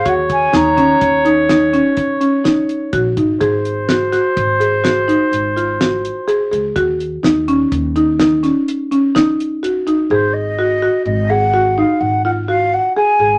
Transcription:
<<
  \new Staff \with { instrumentName = "Flute" } { \time 7/4 \key ees \dorian \tempo 4 = 125 ges''8 aes''8 bes''4. r1 r8 | r1. r4 | r1. r4 | c''8 ees''4. ees''8 ges''4 f''8 ges''8 ges''8 f''8 ges''8 aes''4 | }
  \new Staff \with { instrumentName = "Flugelhorn" } { \time 7/4 \key ees \dorian des''1.~ des''8 r8 | c''1.~ c''4 | r1. r4 | r1. r4 | }
  \new Staff \with { instrumentName = "Marimba" } { \time 7/4 \key ees \dorian ges'4 ees'8 des'4 ees'8 ees'8 des'4 des'8 ees'4 ges'8 ees'8 | aes'4 ges'8 ges'4 aes'8 ges'8 ees'4 f'8 ges'4 aes'8 aes'8 | ges'4 ees'8 des'4 ees'8 ees'8 des'4 des'8 ees'4 ges'8 ees'8 | aes'4 ges'8 ges'4 aes'8 ges'8 ees'4 f'8 ges'4 aes'8 aes'8 | }
  \new Staff \with { instrumentName = "Upright bass" } { \clef bass \time 7/4 \key ees \dorian ees,4 ees,4 ees,2 r2 bes,,8 aes,,8 | aes,,2 aes,,2 aes,,2 r8 des,8 | ees,4 ees,4 ees,2 r2. | aes,,2 aes,,2 aes,,2 r8 aes,,8 | }
  \new DrumStaff \with { instrumentName = "Drums" } \drummode { \time 7/4 <hh bd>8 <hh bd>8 <hh sn>8 <hh bd>8 <hh bd>8 hh8 <hh sn>8 hh8 <hh bd>8 hh8 <hh sn>8 hh8 <hh bd>8 <hh bd>8 | <hh bd>8 hh8 <hh sn>8 <hh sn>8 <hh bd>8 hh8 <hh sn>8 hh8 hh8 hh8 <hh sn>8 hh8 hh8 hh8 | <hh bd>8 hh8 <hh sn>8 hh8 <hh bd>8 hh8 <hh sn>8 <hh sn>8 hh8 hh8 <hh sn>8 hh8 hh8 hh8 | r4 r4 r4 r4 r4 r4 r4 | }
>>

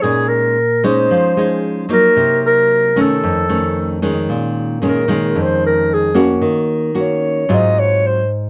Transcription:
<<
  \new Staff \with { instrumentName = "Clarinet" } { \time 4/4 \key bes \minor \tempo 4 = 113 aes'8 bes'4 c''4. r8 bes'8~ | bes'8 bes'4 a'2 r8 | r4 bes'4 c''8 bes'8 aes'8 r8 | r4 des''4 ees''8 des''8 c''8 r8 | }
  \new Staff \with { instrumentName = "Nylon-string guitar" } { \time 4/4 \key bes \minor << { <aes des' ees'>4 r8 <aes des' ees'>4 <aes des' ees'>4 <ges bes ees'>8~ | <ges bes ees'>4. <ees a des'>4 <ees a des'>4 <ees aes des'>8~ | <ees aes des'>4 <ees aes des'>8 <ees aes des'>2 <bes des' ges'>8~ | <bes des' ges'>4 <bes des' ges'>4 <ges c' f'>4. r8 | } \\ { bes,2 f2 | c2 f,2 | bes,2 f,2 | ees2 aes,2 | } >> }
>>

